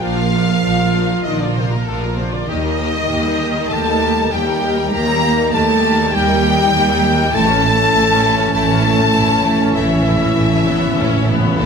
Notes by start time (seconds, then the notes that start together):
Already playing: F3 A#3
0.01 A#1 F3 D4 F4 A#4 F5
0.19 A#3 F4 A#4
0.33 F3 D4 F4 A#4
0.49 A#3 F4 A#4
0.64 A#1 F3 D4 F4 A#4
0.80 A#3 F4 A#4
0.96 F3 D4 F4 A#4
1.11 A#3 F4 A#4
1.23 A#1 D#3 F3 D4 D#4 F4 A#4 D#5
1.40 D3 A#3 D4 F4 A#4 D5
1.54 C3 F3 C4 D4 C5
1.59 F4 A#4
1.70 A#2 A#3 F4 A#4
1.86 A#1 A2 F3 A3 D4 F4 A4 A#4
2.01 A#2 A#3 F4 A#4
2.15 C3 F3 C4 D4 F4 A#4 C5
2.31 D3 A#3 D4 F4 A#4 D5
2.47 D#2 D#3 G3 A#3 D#4 G4 D#5
2.64 G3 D#4 A#4
2.79 D#3 A#3 G4
2.95 G3 D#4 A#4
3.10 D#2 D#3 A#3 G4
3.24 G3 D#4 A#4
3.40 D#3 A#3 G4
3.55 G3 D#4 A#4
3.70 D#2 D#3 A3 A#3 G4 A4 A5
3.86 G3 D#4 A#4
4.01 D#3 A#3 G4
4.16 G3 D#4 A#4
4.30 D#2 D#3 G3 A#3 G4 G5
4.45 G3 D#4 A#4
4.62 D#3 A#3 G4
4.76 G3 D#4 A#4
4.90 D#2 D#3 A#3 G4 A#4 A#5
5.06 G3 D#4 A#4
5.20 D#3 A#3 G4
5.37 G3 D#4 A#4
5.52 D#2 D#3 A3 A#3 G4 A4 A5
5.67 G3 D#4 A#4
5.82 D#3 A#3 G4
5.97 G3 D#4 A#4
6.12 D#2 D#3 G3 A#3 G4 G5
6.26 D#4 A#4
6.31 G3
6.43 D#3 A#3 G4
6.58 G3 D#4 A#4
6.73 D#2 D#3 A#3 G4
6.87 G3 D#4 A#4
7.01 G4
7.06 D#3 A#3
7.16 G3 D#4 A#4
7.32 A1 A2 E3 A3 C#4 E4 A4 A5
7.47 A2 E3 C#4 C#5
7.56 A2
7.61 A2 A3 E4 A4
7.71 A2
7.77 A2 E3 C#4 C#5
7.93 A1 A2 A3 E4 A4
8.07 A2 E3 C#4 C#5
8.11 C#4
8.17 A2
8.22 A2 A3 E4 A4
8.32 A2
8.37 A2 E3 C#4 C#5
8.46 A2
8.53 A1 A2 A3 E4 A4 A5
8.62 A2
8.68 A2 E3 C#4 C#5
8.76 A2
8.81 A3 E4 A4
8.92 A2
8.97 A2 E3 C#4 C#5
9.08 A2
9.12 A1 A2 A3 E4 A4
9.22 A2
9.27 A2 E3 C#4 C#5
9.36 A2
9.43 A2 A3 E4 A4
9.51 A2
9.58 A2 C#4 C#5
9.62 A2 E3 C#4
9.73 A1 A2 E3 A3 E4 A4 E5, reverse cymbal
9.80 A2
9.87 A2 C#4 C#5
9.92 A2 E3 C#4
10.02 A2 E4 A4
10.06 A2 A3
10.18 A2 E3 C#4 C#5
10.25 A2
10.33 A2 E4 A4
10.37 A1 A2 A3
10.48 A2 C#4 C#5
10.55 A2
10.63 A2 E4 A4
10.68 B3
10.72 A2
10.79 A2 C#4 C#5
10.87 A2
10.95 A1 A2 E4 A4
10.99 A2 C#4
11.09 A2 C#4 C#5
11.17 A2
11.25 A2 E4 A4
11.29 A2 B3
11.40 A2 C#4 C#5
11.47 A2
11.55 A2 E4 A4
11.59 A1 A3